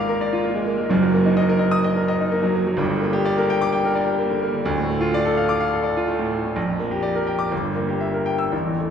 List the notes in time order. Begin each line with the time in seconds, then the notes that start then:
Already playing: G#1 G#2 G#3 A#3 F4 A#4 D5 F5 D6
0.09 A#4
0.21 D5
0.33 F4
0.44 A#3
0.55 G#3
0.67 A#3
0.78 G#3
0.89 F#1 F#2
1.02 F#3
1.14 A#3
1.26 D#4
1.37 D#5
1.49 A#4
1.59 D#5
1.71 D#6
1.84 D#5
1.96 A#4
2.08 D#5
2.21 D#4
2.32 A#3
2.43 F#3
2.56 A#3
2.67 F#3
2.77 G1 G2
2.90 D3
3.01 A#3
3.13 G4
3.25 D5
3.38 A#4
3.50 G5
3.61 D6
3.73 G5
3.85 A#4
3.96 D5
4.07 G4
4.19 A#3
4.30 D3
4.42 A#3
4.54 D3
4.65 D2
4.78 A2
4.90 A3
5.01 F4
5.14 D5
5.25 A4
5.37 F5
5.49 D6
5.60 F5
5.72 A4
5.83 D5
5.97 F4
6.08 A3
6.19 A2
6.32 A3
6.45 A2
6.56 A#1
6.67 F2
6.80 A#3
6.91 G4
7.03 D5
7.16 A#4
7.27 G5
7.39 D6
7.51 G1
7.63 G2
7.76 A#3
7.89 G4
8.01 E5
8.14 A#4
8.26 G5
8.38 E6
8.52 A1
8.65 E2
8.80 A3